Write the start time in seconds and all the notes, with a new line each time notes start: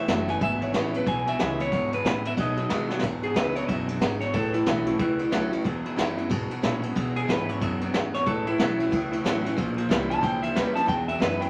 Already playing: E2 E5
0.08 F#1 A2 E3 F#3 A3 C#4 F#4, snare, ride
0.28 A2 E3 G#5, snare, ride
0.40 G#1 E2 B2 E5, kick, ride
0.61 E2 B2 C#5, ride
0.73 A1 E2 C#3 E3 G#3 C#4 E4, snare, ride
0.93 E2 B2 C#4 E4 B4, ride
1.06 B1 E2 B2 G#5, kick, ride
1.26 E2 B2 E5, ride
1.39 C#2 E2 C#3 E3 G#3 C#4 E4, snare, ride
1.60 E2 B2 C#5, snare, ride
1.72 E2 G#2 B2, kick, ride
1.92 E2 B2 B4, ride
2.05 E2 A2 C#3, kick, snare, ride
2.25 E2 B2 E5, ride
2.37 B2 F#3 D#5, kick, ride
2.57 B2 F#3, ride
2.69 B2 D#3 G#3 B3 F#4, snare, ride
2.89 B2 F#3 B3 F#4, snare
2.99 E2, snare
3.03 E2 G#2 B2, kick, ride
3.23 E2 B2 G#4, ride
3.34 C#2 E2 C#3 E3 G#3 C#4 E4 B4, snare, ride
3.55 E2 B2 C#4 E4 C#5, ride
3.68 B1 E2 F#2 B2 E5, kick, ride
3.88 E2 B2, ride
4.01 G#1 E2 G#2 C#3, snare, ride
4.21 E2 B2 C#5, snare, ride
4.33 A1 A2 E3 A4, kick, ride
4.53 A2 E3 E4, ride
4.66 B1 A2 E3 F#3 A3 C#4 F#4, kick, snare, ride
4.86 A2 E3 C#4 F#4, ride
4.99 C#2 E2 A2 E3, kick, ride
5.19 A2 E3, ride
5.31 D2 A2 E3 F#3 A3 C#4 F#4, snare, ride
5.51 A2 E3 C#4 F#4, ride
5.64 E2 B2, kick, ride
5.85 E2 B2, ride
5.96 E2 F#2 C#3 E3 G#3 C#4 E4, snare, ride
6.17 E2 B2 C#4 E4, ride
6.30 E2 G#2 B2, kick, ride
6.50 E2 B2, ride
6.62 E2 A#2 C#3 E3 G#3 C#4 E4, snare, ride
6.82 E2 B2 C#4 E4, ride
6.96 E2 B2, kick, ride
7.16 E2 B2 G#4, ride
7.28 E2 G#2 C#3 E3 G#3 C#4 E4 B4, kick, snare, ride
7.49 E2 B2 C#4 E4 C#5, ride
7.61 E2 F#2 B2 E5, kick, ride
7.81 E2 B2, ride
7.93 E2 G#2 C#3, snare, ride
8.13 E2 B2 C#5, snare, ride
8.26 A1 A2 E3 A4, kick, ride
8.46 A2 E3 E4, ride
8.58 B1 A2 E3 F#3 A3 C#4 F#4, snare, ride
8.79 A2 E3 C#4 F#4, ride
8.91 C#2 E2 A2 E3, kick, ride
9.12 A2 E3, ride
9.24 A1 A2 E3 F#3 A3 C#4 F#4, snare, ride
9.43 A2 E3 C#4 F#4, snare, ride
9.56 A#1 A#2 F3, kick, ride
9.77 A#2 F3, ride
9.89 C2 A#2 E3 G3 C#4 E4, kick, snare, ride
10.10 A#2 F3 A5, ride
10.21 C#2 A#2 E3 F3 G5, kick, ride
10.42 A#2 F3 E5, ride
10.53 D#2 A#2 E3 G3 C#4 E4 B4, snare, ride
10.74 A#2 F3 C#4 E4 A5, snare, ride
10.86 E2 B2 G5, kick, ride
11.08 E2 B2 E5, ride
11.19 E2 F#2 C#3 E3 G#3 C#4 E4 B4, snare, ride
11.40 E2 B2 C#4 E4 G5, ride